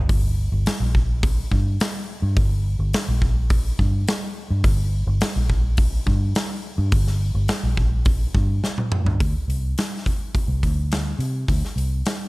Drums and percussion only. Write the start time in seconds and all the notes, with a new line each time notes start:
0.09 kick, open hi-hat
0.66 snare, open hi-hat
0.95 kick
1.23 kick, open hi-hat
1.52 kick
1.80 snare, open hi-hat
2.37 kick, open hi-hat
2.93 snare, open hi-hat
3.22 kick
3.50 kick, open hi-hat
3.79 kick
4.08 snare, open hi-hat
4.64 kick, open hi-hat
5.21 snare, open hi-hat
5.50 kick
5.77 kick, open hi-hat
6.07 kick
6.35 snare, open hi-hat
6.92 kick, open hi-hat
7.07 snare
7.48 snare, open hi-hat
7.77 kick
8.05 kick, open hi-hat
8.35 kick
8.64 snare
8.78 mid tom
8.92 mid tom
9.06 floor tom
9.20 kick, open hi-hat
9.50 open hi-hat
9.78 snare, open hi-hat
10.06 kick, open hi-hat
10.35 kick, open hi-hat
10.63 kick, open hi-hat
10.92 snare, open hi-hat
11.20 open hi-hat
11.48 kick, open hi-hat
11.65 snare
11.78 open hi-hat
12.06 snare, open hi-hat